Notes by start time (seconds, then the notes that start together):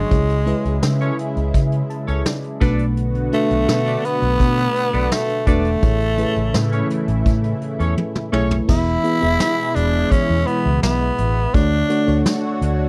Already playing: F#3 G#3 D4 F#4 C#5
0.11 C#2 C#3 G#3 E4 G#4 C#5, kick, closed hi-hat
0.29 closed hi-hat
0.46 G#3 E4 G#4 B4, closed hi-hat
0.65 C#2, closed hi-hat
0.83 C#3, snare
1.01 C#4 A4 C#5, closed hi-hat
1.19 closed hi-hat
1.36 C#2, closed hi-hat
1.54 C#3, kick, closed hi-hat
1.72 closed hi-hat
1.90 A5, closed hi-hat
2.07 C#2 C#4 A4 C#5, closed hi-hat
2.25 D5, snare
2.44 closed hi-hat
2.61 B1 B2 D3 A3 B3 D4 F#4 A4 B4 D5, kick, closed hi-hat
2.79 closed hi-hat
2.97 closed hi-hat
3.15 closed hi-hat
3.32 A3 D4 F#4 B4, closed hi-hat
3.50 B1, closed hi-hat
3.69 B2, snare
3.86 D4 A4 B4 D5, closed hi-hat
4.04 B3, closed hi-hat
4.22 B1, closed hi-hat
4.40 B2, kick, closed hi-hat
4.58 closed hi-hat
4.76 closed hi-hat
4.94 B1 D4 A4 B4 D5, closed hi-hat
5.12 A3, snare
5.29 closed hi-hat
5.47 E1 A3 D4 F#4 A4 B4 D5, kick, closed hi-hat
5.65 closed hi-hat
5.82 A1 A2 C#3 E3 A3 E4 G#4 C#5, kick, closed hi-hat
6.00 closed hi-hat
6.18 A3 E4 G#4 B4, closed hi-hat
6.36 A1, closed hi-hat
6.54 A2, snare
6.72 C#4 A4 C#5, closed hi-hat
6.90 closed hi-hat
7.08 A1, closed hi-hat
7.26 A2, kick, closed hi-hat
7.44 closed hi-hat
7.61 closed hi-hat
7.80 E2 C#4 A4 C#5, closed hi-hat
7.97 high tom
8.15 mid tom
8.32 B1 A3 C#4 E4 G#4 A4 C#5, mid tom
8.51 floor tom
8.68 E1 B2 E3 G#3 B3 E4 G#4 E5, kick, crash
9.04 B3 E4 G#4 E5, closed hi-hat
9.21 E1 B3 E4 G#4 E5
9.40 snare, closed hi-hat
9.76 E1 D4, closed hi-hat
10.11 C#4, muted fingered electric bass stroke, kick, closed hi-hat
10.30 E2
10.47 B3, closed hi-hat
10.66 C#2
10.83 B1 B3, snare, closed hi-hat
11.18 A1, closed hi-hat
11.54 D2 D3 A3 D4 F#4 C#5, kick, closed hi-hat
11.89 A3 D4 F#4 C#5, closed hi-hat
12.07 D2 A3 D4 F#4 C#5
12.26 snare, closed hi-hat
12.61 D2, closed hi-hat